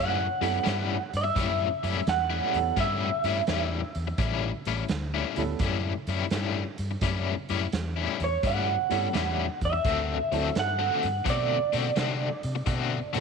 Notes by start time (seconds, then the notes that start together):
Already playing: F#2 A2 G3 C#4 E4
0.00 F#5
0.41 F#2 A2 G3 B3 C#4 E4 G4 A4, closed hi-hat
0.63 G2 A2 G3 C#4 E4, snare, closed hi-hat
1.13 G2 E5, closed hi-hat
1.24 muted overdriven electric guitar stroke
1.36 F#2 A2 G3 C#4 E4, kick, closed hi-hat
1.83 F#2 A2 G3 C#4 E4, closed hi-hat
2.07 E2 F#5, snare, closed hi-hat
2.30 A2 G3 C#4 E4
2.54 E2 G3 B3 C#4 E4 A4, closed hi-hat
2.76 G2 A2 G3 C#4 E4 E5, kick, closed hi-hat
3.24 G2 A2 G3 C#4 E4, closed hi-hat
3.47 E2 A2 G3 C#4 E4, snare, closed hi-hat
3.95 E2, closed hi-hat
4.07 muted overdriven electric guitar stroke
4.18 A1 A2 G3 C#4 E4, kick, closed hi-hat
4.65 A1 A2 G3 C#4 E4, closed hi-hat
4.89 D2, snare, closed hi-hat
5.14 A2 G3 C#4 E4
5.36 D2 G3 B3 C#4 E4 A4, closed hi-hat
5.59 F#2 A2 G3 C#4 E4, kick, closed hi-hat
6.07 F#2 A2 G3 C#4 E4, closed hi-hat
6.30 G2 A2 G3 C#4 E4, snare, closed hi-hat
6.78 G2, closed hi-hat
6.91 muted overdriven electric guitar stroke
7.01 F#2 A2 G3 C#4 E4, kick, closed hi-hat
7.49 F#2 A2 G3 C#4 E4, closed hi-hat
7.72 E2, snare, closed hi-hat
7.96 A2 G3 C#4 E4
8.20 E2 C#5, closed hi-hat
8.43 G2 A2 G3 C#4 E4 F#5, kick, closed hi-hat
8.89 G2 A2 G3 B3 C#4 E4 A4, closed hi-hat
9.13 E2 A2 G3 C#4 E4, snare, closed hi-hat
9.61 E2 E5, kick, closed hi-hat
9.73 muted overdriven electric guitar stroke
9.84 D2 D3 A3 C4 F#4, kick, closed hi-hat
10.32 D2 D3 F#3 A3 C4 D4 E4 F#4 A4, closed hi-hat
10.55 G2, snare, closed hi-hat
10.59 F#5
10.79 D3 A3 C4 F#4
11.03 G2, closed hi-hat
11.25 B2 D3 A3 C4 F#4, kick, closed hi-hat
11.30 D5
11.73 B2 D3 A3 C4 F#4, closed hi-hat
11.96 C3 D3 A3 C4 F#4, snare, closed hi-hat
12.43 C3, closed hi-hat
12.55 muted overdriven electric guitar stroke
12.66 B2 D3 A3 C4 F#4, kick, closed hi-hat
13.13 B2 D3 F#3 A3 C4 D4 E4 F#4 A4 C5, snare, closed hi-hat